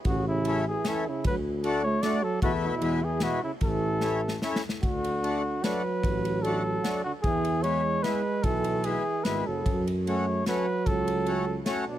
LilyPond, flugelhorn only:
\new Staff \with { instrumentName = "Flugelhorn" } { \time 3/4 \key d \lydian \tempo 4 = 150 fis'8 e'4 gis'8 a'8 e'8 | b'8 r4 cis''8 d''8 a'8 | fis'8 e'4 gis'8 fis'8 e'8 | a'2 r4 |
fis'2 b'4~ | b'4 a'4. fis'8 | gis'4 cis''4 b'4 | a'4 gis'4 b'8 a'8~ |
a'8 r8 cis''4 b'4 | a'2 r8 d'8 | }